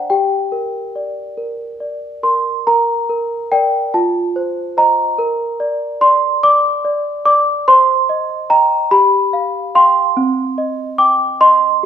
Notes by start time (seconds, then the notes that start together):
Already playing: D4 C5 D5 F#5 G5 A5 A#5
0.10 G4 G5
0.52 A#4
0.96 D5
1.37 A#4
1.80 D5
2.23 A#4 C6
2.67 A#4 A#5
3.09 A#4
3.52 A#4 D5 G5
3.94 F4 A5
4.36 C5
4.77 C5 D#5 A#5
5.18 A#4
5.60 D5
6.01 D5 C6
6.43 D5 D6
6.85 D5
7.25 D5 D6
7.68 C5 C6
8.09 D#5
8.50 D#5 G5 A#5
8.91 G4 B5
9.33 F5
9.75 F5 G5 C6
10.17 C4
10.58 D#5
10.98 G5 D6
11.41 D#5 C6